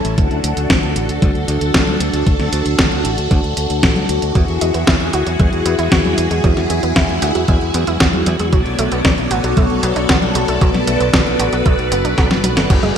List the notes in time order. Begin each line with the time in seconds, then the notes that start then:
Already playing: C#4 E4 A4
0.05 A1, closed hi-hat
0.17 D2 D4 F#4 A4, kick, closed hi-hat
0.31 D2, closed hi-hat
0.44 D2, closed hi-hat
0.57 D2, closed hi-hat
0.70 D2, kick, snare, closed hi-hat
0.83 D2, closed hi-hat
0.96 A1, closed hi-hat
1.09 D2, closed hi-hat
1.22 D2, kick, closed hi-hat, high conga
1.35 D2, closed hi-hat
1.48 D2, closed hi-hat
1.61 D2, closed hi-hat
1.74 D2, kick, snare, closed hi-hat
1.87 D2, closed hi-hat, high conga
2.00 D2, closed hi-hat
2.13 D2, closed hi-hat
2.27 D2, kick, closed hi-hat
2.39 D2, snare, closed hi-hat
2.52 D2, closed hi-hat
2.66 D2, closed hi-hat
2.79 D2, kick, snare, closed hi-hat
2.92 D2, closed hi-hat
3.05 A1, closed hi-hat
3.18 D2, closed hi-hat
3.31 D2, kick, closed hi-hat
3.44 D2, closed hi-hat
3.57 D2, closed hi-hat
3.70 D2, closed hi-hat
3.83 A1, kick, snare, closed hi-hat
3.96 D2, closed hi-hat, high conga
4.09 D2, closed hi-hat
4.22 D2, closed hi-hat
4.35 E2 F#3 E4 G#4, kick, closed hi-hat
4.48 E2, closed hi-hat
4.61 E2 G#3, closed hi-hat
4.74 E2 B3, closed hi-hat
4.87 E2 E4, kick, snare, closed hi-hat
5.00 E2, closed hi-hat
5.13 D2 F#4, closed hi-hat
5.27 E2 F#3, closed hi-hat
5.40 E2 G#3, kick, closed hi-hat, high conga
5.53 E2, closed hi-hat
5.66 E2 B3, closed hi-hat
5.79 E2 E4, closed hi-hat
5.92 E2 F#4, kick, snare, closed hi-hat
6.05 E2, closed hi-hat, high conga
6.18 E2 F#3, closed hi-hat
6.31 E2 G#3, closed hi-hat
6.44 E2 F#3, kick, closed hi-hat
6.57 E2, snare, closed hi-hat
6.70 E2 G#3, closed hi-hat
6.83 E2 B3, closed hi-hat
6.96 E2 E4, kick, snare, closed hi-hat
7.09 E2, closed hi-hat
7.22 D2 F#4, closed hi-hat
7.35 E2 F#3, closed hi-hat
7.48 E2 G#3, kick, closed hi-hat
7.61 E2, closed hi-hat
7.74 E2 B3, closed hi-hat
7.87 E2 E4, closed hi-hat
8.00 E2 F#4, kick, snare, closed hi-hat
8.13 E2, closed hi-hat, high conga
8.26 E2 F#3, closed hi-hat
8.39 E2 G#3, closed hi-hat
8.53 B1 F#3 B3 A4 C#5 D5, kick, closed hi-hat
8.66 B1, closed hi-hat
8.79 B1 A3, closed hi-hat
8.92 B1 B3, closed hi-hat
9.05 B1 D4, kick, snare, closed hi-hat
9.18 B1, closed hi-hat
9.31 A1 F#4, closed hi-hat
9.44 B1 F#3, closed hi-hat
9.57 B1 A3, kick, closed hi-hat, high conga
9.70 B1, closed hi-hat
9.83 B1 B3, closed hi-hat
9.96 B1 D4, closed hi-hat
10.09 B1 F#4, kick, snare, closed hi-hat
10.22 B1, closed hi-hat, high conga
10.35 B1 F#3, closed hi-hat
10.48 B1 A3, closed hi-hat
10.61 B1 F#3 B4, kick, closed hi-hat
10.74 B1, snare, closed hi-hat, high conga
10.87 B1 A3, closed hi-hat
11.00 B1 B3, closed hi-hat
11.14 B1 D4, kick, snare, closed hi-hat
11.26 B1, closed hi-hat
11.39 A1 F#4, closed hi-hat
11.53 B1 F#3, closed hi-hat
11.66 B1 A3, kick, closed hi-hat
11.79 B1, closed hi-hat
11.92 F#1 B3, closed hi-hat
12.05 B1 D4, closed hi-hat
12.18 B1 F#4, kick, snare, closed hi-hat
12.31 F#1, snare, closed hi-hat, high conga
12.44 B1 F#3, closed hi-hat, high conga
12.57 F#1 A3, snare, closed hi-hat
12.70 F#1 F#3 A3 F#4 G#4, kick, closed hi-hat, crash
12.83 F#1 G#3, closed hi-hat, high conga